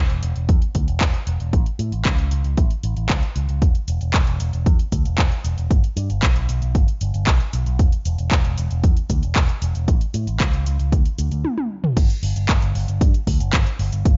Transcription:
0.09 picked electric bass E1, closed hi-hat
0.23 picked electric bass E1, closed hi-hat
0.36 picked electric bass E1, closed hi-hat
0.49 picked electric bass E2, kick, closed hi-hat
0.62 closed hi-hat
0.75 picked electric bass D2, kick, closed hi-hat
0.88 picked electric bass E1, closed hi-hat
1.01 picked electric bass E1, kick, clap, closed hi-hat
1.14 closed hi-hat
1.27 picked electric bass E1, closed hi-hat
1.40 picked electric bass E1, closed hi-hat
1.53 picked electric bass A1, kick, closed hi-hat
1.66 closed hi-hat
1.79 picked electric bass A2, closed hi-hat
1.92 picked electric bass A1, closed hi-hat
2.05 picked electric bass C#2, kick, clap, closed hi-hat
2.18 picked electric bass C#2, closed hi-hat
2.31 picked electric bass C#2, closed hi-hat
2.44 picked electric bass C#2, closed hi-hat
2.57 picked electric bass A1, kick, closed hi-hat
2.70 closed hi-hat
2.83 picked electric bass A1, closed hi-hat
2.96 picked electric bass A1, closed hi-hat
3.10 picked electric bass C#2, kick, clap, closed hi-hat
3.23 closed hi-hat
3.36 picked electric bass C#2, closed hi-hat
3.49 picked electric bass C#2, closed hi-hat
3.62 picked electric bass E1, kick, closed hi-hat, cabasa
3.75 closed hi-hat, cabasa
3.88 picked electric bass E1, closed hi-hat, cabasa
4.01 picked electric bass E1, closed hi-hat, cabasa
4.14 picked electric bass E1, kick, clap, closed hi-hat, cabasa
4.27 picked electric bass E1, closed hi-hat, cabasa
4.40 picked electric bass E1, closed hi-hat, cabasa
4.53 picked electric bass E1, closed hi-hat, cabasa
4.66 picked electric bass E2, kick, closed hi-hat, cabasa
4.79 closed hi-hat, cabasa
4.92 picked electric bass D2, kick, closed hi-hat, cabasa
5.05 picked electric bass E1, closed hi-hat, cabasa
5.18 picked electric bass E1, kick, clap, closed hi-hat, cabasa
5.32 closed hi-hat, cabasa
5.44 picked electric bass E1, closed hi-hat, cabasa
5.57 picked electric bass E1, closed hi-hat, cabasa
5.71 picked electric bass G1, kick, closed hi-hat, cabasa
5.84 closed hi-hat, cabasa
5.97 picked electric bass G2, closed hi-hat, cabasa
6.10 picked electric bass G1, closed hi-hat, cabasa
6.23 picked electric bass B1, kick, clap, closed hi-hat, cabasa
6.36 picked electric bass B1, closed hi-hat, cabasa
6.49 picked electric bass B1, closed hi-hat, cabasa
6.62 picked electric bass B1, closed hi-hat, cabasa
6.75 picked electric bass G1, kick, closed hi-hat, cabasa
6.88 closed hi-hat, cabasa
7.01 picked electric bass G1, closed hi-hat, cabasa
7.14 picked electric bass G1, closed hi-hat, cabasa
7.27 picked electric bass B1, kick, clap, closed hi-hat, cabasa
7.40 closed hi-hat, cabasa
7.53 picked electric bass B1, closed hi-hat, cabasa
7.66 picked electric bass B1, closed hi-hat, cabasa
7.79 picked electric bass E1, kick, closed hi-hat, cabasa
7.92 closed hi-hat, cabasa
8.05 picked electric bass E1, closed hi-hat, cabasa
8.18 picked electric bass E1, closed hi-hat, cabasa
8.31 picked electric bass E1, kick, clap, closed hi-hat, cabasa
8.45 picked electric bass E1, closed hi-hat, cabasa
8.58 picked electric bass E1, closed hi-hat, cabasa
8.71 picked electric bass E1, closed hi-hat, cabasa
8.84 picked electric bass E2, kick, closed hi-hat, cabasa
8.97 closed hi-hat, cabasa
9.10 picked electric bass D2, kick, closed hi-hat, cabasa
9.23 picked electric bass E1, closed hi-hat, cabasa
9.36 picked electric bass E1, kick, clap, closed hi-hat, cabasa
9.49 closed hi-hat, cabasa
9.62 picked electric bass E1, closed hi-hat, cabasa
9.75 picked electric bass E1, closed hi-hat, cabasa
9.88 picked electric bass A1, kick, closed hi-hat, cabasa
10.01 closed hi-hat, cabasa
10.14 picked electric bass A2, closed hi-hat, cabasa
10.27 picked electric bass A1, closed hi-hat, cabasa
10.40 picked electric bass C#2, kick, clap, closed hi-hat, cabasa
10.53 picked electric bass C#2, closed hi-hat, cabasa
10.66 picked electric bass C#2, closed hi-hat, cabasa
10.79 picked electric bass C#2, closed hi-hat, cabasa
10.92 picked electric bass D2, kick, closed hi-hat, cabasa
11.05 closed hi-hat, cabasa
11.18 picked electric bass D2, closed hi-hat, cabasa
11.31 picked electric bass D2, closed hi-hat, cabasa
11.45 high tom
11.58 high tom
11.84 mid tom
11.97 picked electric bass G1, kick, closed hi-hat, crash, cabasa
12.10 closed hi-hat, cabasa
12.23 picked electric bass G1, open hi-hat
12.36 picked electric bass G1, closed hi-hat, cabasa
12.49 picked electric bass G1, kick, clap, closed hi-hat, cabasa
12.62 picked electric bass G1, closed hi-hat, cabasa
12.75 picked electric bass G1, open hi-hat
12.88 picked electric bass G1, closed hi-hat, cabasa
13.01 picked electric bass G2, kick, closed hi-hat, cabasa
13.14 closed hi-hat, cabasa
13.27 picked electric bass D2, kick, open hi-hat
13.40 picked electric bass G1, closed hi-hat, cabasa
13.53 picked electric bass G1, kick, clap, closed hi-hat, cabasa
13.66 closed hi-hat, cabasa
13.79 picked electric bass G1, open hi-hat
13.92 picked electric bass G1, closed hi-hat, cabasa
14.05 picked electric bass G1, kick, closed hi-hat, cabasa

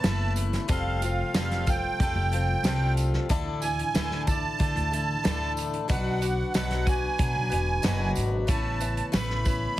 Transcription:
Already playing: tonewheel organ C#3 E3 A3 B3 E4, steel-string acoustic guitar B3, accordion A5
0.04 upright bass F#1, steel-string acoustic guitar A3 C#4 E4 B4, snare, closed hi-hat, tambourine
0.36 closed hi-hat, tambourine
0.53 snare, closed hi-hat
0.68 upright bass F1, tonewheel organ C3 F3 G3 F4, steel-string acoustic guitar F3 G3 C4 F4 A4, accordion F5, kick, closed hi-hat, tambourine
1.02 steel-string acoustic guitar C4 F4 A4, closed hi-hat, tambourine
1.34 upright bass F1, steel-string acoustic guitar F3 G3 C4 F4 A4, accordion F5, snare, closed hi-hat, tambourine
1.51 snare, closed hi-hat
1.66 steel-string acoustic guitar C4 F4 A4, accordion G5, kick, closed hi-hat, tambourine
2.00 upright bass F2, steel-string acoustic guitar G3 C4 F4 A4, kick, closed hi-hat
2.15 upright bass F1
2.32 steel-string acoustic guitar C4 F4 A4, closed hi-hat
2.63 upright bass C2, steel-string acoustic guitar F3 G3 C4 F4 A4, snare, closed hi-hat, tambourine
2.97 closed hi-hat, tambourine
3.13 snare
3.29 upright bass D2, tonewheel organ A2 D3 E3 D4 E4, steel-string acoustic guitar D3 A3 D4 E4 A4, kick, closed hi-hat, tambourine
3.62 steel-string acoustic guitar D4 E4 A4, accordion G#5, closed hi-hat, tambourine
3.79 closed hi-hat
3.94 upright bass D2, steel-string acoustic guitar D3 A3 D4 E4 A4, snare, closed hi-hat, tambourine
4.11 snare
4.27 steel-string acoustic guitar D4 E4 A4, accordion A5, kick, closed hi-hat, tambourine
4.59 upright bass D3, steel-string acoustic guitar A3 D4 E4 A4, kick, closed hi-hat
4.76 upright bass D2, closed hi-hat
4.92 steel-string acoustic guitar D4 E4 A4, closed hi-hat
5.24 upright bass D2, steel-string acoustic guitar D3 A3 D4 E4 A4, snare, closed hi-hat, tambourine
5.57 closed hi-hat, tambourine
5.74 closed hi-hat
5.88 upright bass B1, steel-string acoustic guitar B2 F#3 D4 F#4 B4, tonewheel organ B2 F#3 F#4, accordion F#5, kick, closed hi-hat, tambourine
6.21 steel-string acoustic guitar D4 F#4 B4, closed hi-hat, tambourine
6.54 upright bass B1, steel-string acoustic guitar B2 F#3 D4 F#4 B4, accordion F#5, snare, closed hi-hat, tambourine
6.71 snare, closed hi-hat
6.85 steel-string acoustic guitar D4 F#4 B4, accordion G#5, kick, closed hi-hat, tambourine
7.18 upright bass B2, steel-string acoustic guitar F#3 D4 F#4 B4, kick, closed hi-hat
7.36 upright bass B1
7.50 upright bass E1, steel-string acoustic guitar D4 F#4 B4, closed hi-hat, tambourine
7.82 upright bass F#1, steel-string acoustic guitar B2 F#3 D4 F#4 B4, snare, closed hi-hat, tambourine
8.16 upright bass G#1, closed hi-hat, tambourine
8.47 upright bass A1, tonewheel organ C#3 E3 A3 B3 E4, steel-string acoustic guitar A3 C#4 E4 B4, accordion A5, kick, closed hi-hat, tambourine
8.80 steel-string acoustic guitar C#4 E4 B4, closed hi-hat, tambourine
8.97 closed hi-hat
9.12 upright bass A1, steel-string acoustic guitar A3 C#4 E4 B4, accordion B5, snare, closed hi-hat, tambourine
9.30 snare
9.45 steel-string acoustic guitar C#4 E4 B4, kick, closed hi-hat, tambourine

